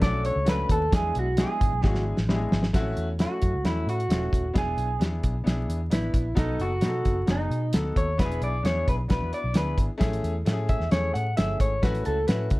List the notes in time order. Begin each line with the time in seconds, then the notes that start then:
0.00 B1 A3 C#4 D4 E4 A4 D5, kick, snare, closed hi-hat
0.06 F#4
0.25 C#5, closed hi-hat
0.36 C#2
0.45 A3 C#4 D4 F#4 A4, snare, closed hi-hat
0.49 B4
0.69 D#2 A4, kick, closed hi-hat
0.91 E2 G#3 B3 D4 E4 G#4, kick, snare, closed hi-hat
0.95 G#4
1.15 B1, closed hi-hat
1.19 F#4
1.37 G#3 B3 D4 E4 G#4, snare, closed hi-hat
1.61 G#1, kick, closed hi-hat
1.72 B1
1.82 G#1 G#3 B3 D4 E4 G#4, kick, snare
1.88 F#4
1.95 snare
2.17 A1, snare
2.29 G#3 B3 D4 E4 G4, snare
2.36 G#4
2.52 G#1, snare
2.63 snare
2.73 A1 A3 C4 E4 F#4, kick, snare, closed hi-hat
2.80 C#4
2.97 E2, closed hi-hat
3.19 A3 C#4 E4 F#4, snare, closed hi-hat
3.42 F#2, kick, closed hi-hat
3.54 C#2
3.64 E2 A3 C#4 E4 F#4, snare, closed hi-hat
3.86 A2 F#4, closed hi-hat
4.00 closed hi-hat
4.09 E1 A3 C#4 E4 F4, snare, closed hi-hat
4.17 F#4
4.33 D#1, kick, closed hi-hat
4.54 E1 B3 D4 E4 G#4, kick, snare, closed hi-hat
4.58 G#4
4.77 B1, closed hi-hat
4.99 E2 B3 D4 E4 G4, snare, closed hi-hat
5.06 G#4
5.24 B1, kick, closed hi-hat
5.44 B1 B3 D4 E4 G#4, snare, closed hi-hat
5.69 E2, closed hi-hat
5.90 A1 B3 D4 E4 B4, snare, closed hi-hat
6.14 A#1, kick, closed hi-hat
6.35 B1 B3 D#4 F#4 A4, kick, snare, closed hi-hat
6.59 F#1 F#4, closed hi-hat
6.81 B2 B3 D#4 F#4 G#4, snare, closed hi-hat
6.88 A4
7.05 F#1, kick, closed hi-hat
7.26 F#1 B3 D#4 F#4 G#4, snare, closed hi-hat
7.30 D#4
7.50 B2, closed hi-hat
7.73 D2 B3 D#4 F#4 A4, snare, closed hi-hat
7.96 D#2 C#5, kick, closed hi-hat
8.18 E1 B3 D4 E4 F#4 B4, kick, snare, closed hi-hat
8.25 G#4
8.31 closed hi-hat
8.41 B1 D5, closed hi-hat
8.63 E2 B3 D4 E4 G#4 C#5, snare, closed hi-hat
8.88 B1 B4, kick, closed hi-hat
9.08 B1 B3 D4 E4 F#4 B4, kick, snare, closed hi-hat
9.22 E2
9.33 D5, closed hi-hat
9.44 B1
9.53 D2 B3 D4 E4 G#4, snare, closed hi-hat
9.57 B4
9.78 G#1, kick, closed hi-hat
9.98 A1 A3 C#4 E4 G#4, kick, snare, closed hi-hat
10.13 closed hi-hat
10.23 E2, closed hi-hat
10.45 A2 A3 C#4 E4 F#4, snare, closed hi-hat
10.53 G#4
10.69 E5, kick, closed hi-hat
10.80 E2, snare
10.91 E2 A3 C#4 E4 G#4 C#5, snare, closed hi-hat
11.14 A2 F#5, closed hi-hat
11.36 G1 A3 C#4 E4 G#4 E5, snare, closed hi-hat
11.60 G#1 C#5, kick, closed hi-hat
11.82 A1 A3 C#4 E4 F#4 B4, kick, snare, closed hi-hat
11.95 closed hi-hat
12.05 C#2 A4, closed hi-hat
12.28 A2 A3 C#4 E4 F#4 B4, snare, closed hi-hat
12.50 C#2, kick, closed hi-hat